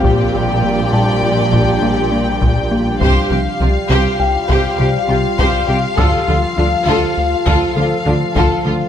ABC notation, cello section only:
X:1
M:5/4
L:1/8
Q:1/4=101
K:Dm
V:1 name="Cello section" clef=bass
B,,8- B,,2 | C, C, C, C, z C, C, C, C, C, | D, D, D, D, z D, D, D, D, D, |]